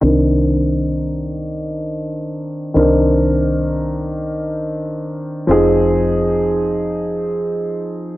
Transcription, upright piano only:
0.01 2.71 D#3 medium
0.01 2.72 C4 medium
0.01 2.72 D4 medium
0.01 2.73 A#4 medium
2.74 5.44 D#3 medium
2.74 5.44 C4 medium
2.74 5.45 D4 medium
2.74 5.46 A#4 medium
5.47 8.17 F3 medium
5.47 8.17 C4 medium
5.47 8.17 D#4 medium
5.47 8.17 G#4 medium

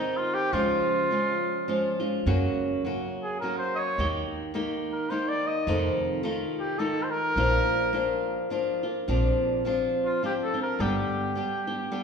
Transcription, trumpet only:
0.00 0.19 D#4 medium
0.17 0.36 F4 medium
0.34 0.55 G4 medium
0.53 2.00 F4 medium
3.23 3.40 G#4 medium
3.40 3.58 A#4 medium
3.58 3.77 C5 medium
3.75 4.08 C#5 medium
3.75 3.79 D#5 medium
4.92 5.11 A#4 medium
5.10 5.30 C5 medium
5.28 5.49 D5 medium
5.47 5.77 D#5 medium
6.60 6.80 G4 medium
6.79 7.05 A4 medium
7.03 7.12 C5 medium
7.11 8.51 A#4 medium
10.05 10.22 F4 medium
10.25 10.33 G4 medium
10.44 10.61 A4 medium
10.62 10.82 A#4 medium
10.81 12.03 G4 medium

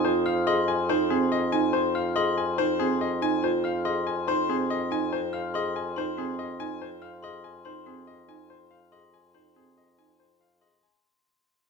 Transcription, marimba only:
0.00 0.11 D#4 medium
0.05 0.32 F4 medium
0.47 0.75 G#4 medium
0.89 1.17 D#4 medium
1.11 1.38 C4 medium
1.53 1.80 D#4 medium
1.74 2.01 F4 medium
2.16 2.43 G#4 medium
2.58 2.86 D#4 medium
2.80 3.07 C4 medium
3.22 3.49 D#4 medium
3.43 3.70 F4 medium
3.85 4.12 G#4 medium
4.28 4.55 D#4 medium
4.49 4.76 C4 medium
4.91 5.18 D#4 medium
5.54 5.82 G#4 medium
5.97 6.24 D#4 medium
6.18 6.45 C4 medium
6.60 6.87 D#4 medium
7.23 7.50 G#4 medium
7.65 7.93 D#4 medium
7.86 8.14 C4 medium
8.28 8.56 D#4 medium
8.92 9.20 G#4 medium
9.34 9.62 D#4 medium
9.56 9.83 C4 medium
9.98 10.25 D#4 medium
10.61 10.89 G#4 medium

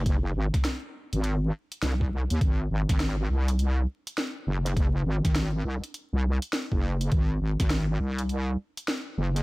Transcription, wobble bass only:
0.00 0.34 F#1 loud
0.35 0.51 G#1 loud
1.13 1.51 G#1 loud
1.82 2.27 C2 loud
2.31 2.40 D#2 loud
2.41 2.69 G#1 loud
2.71 2.86 G#1 medium
2.89 3.28 G#1 loud
3.29 3.86 C2 loud
4.47 5.04 F#1 loud
5.06 5.21 G#1 loud
5.25 5.63 G#1 loud
5.65 5.80 C2 loud
6.13 6.39 C2 loud
6.72 7.10 F#1 loud
7.12 7.39 G#1 loud
7.41 7.57 G#1 loud
7.60 7.98 G#1 loud
8.00 8.57 C2 loud
9.18 9.43 F#1 loud

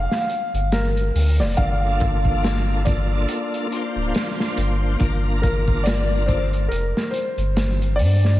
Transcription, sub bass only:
0.54 1.11 G1 medium
1.15 1.41 D2 medium
1.40 1.55 F1 medium
1.58 3.26 G1 loud
3.96 4.12 D1 medium
4.57 4.96 G1 medium
5.01 6.68 G1 medium
6.71 6.93 F1 medium
7.37 8.01 G1 medium
7.99 8.38 G2 medium

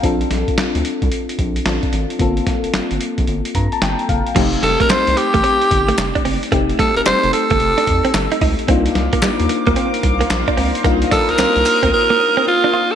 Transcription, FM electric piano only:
0.03 1.62 C4 medium
0.03 1.62 D4 medium
0.03 1.63 F4 medium
0.03 1.63 A4 medium
1.65 2.19 C4 medium
1.65 2.20 D4 medium
1.65 2.19 F4 medium
1.65 2.20 A4 medium
2.19 4.31 A#3 medium
2.19 4.32 C4 medium
2.19 4.32 F4 medium
2.19 4.33 A4 medium
3.55 3.71 A#5 medium
3.73 3.81 A5 medium
3.82 4.07 G5 medium
4.09 4.34 F5 medium
4.35 6.48 A3 medium
4.35 6.48 C4 medium
4.35 6.48 D#4 medium
4.35 6.49 G4 medium
6.52 8.64 A3 medium
6.52 8.64 C4 medium
6.52 8.65 D#4 medium
6.52 8.65 G4 medium
8.68 10.80 A#3 medium
8.68 10.81 D4 medium
8.68 10.81 D#4 medium
8.68 10.81 F4 medium
10.84 12.95 A#3 medium
10.84 12.95 D4 medium
10.84 12.95 D#4 medium
10.84 12.95 F4 medium

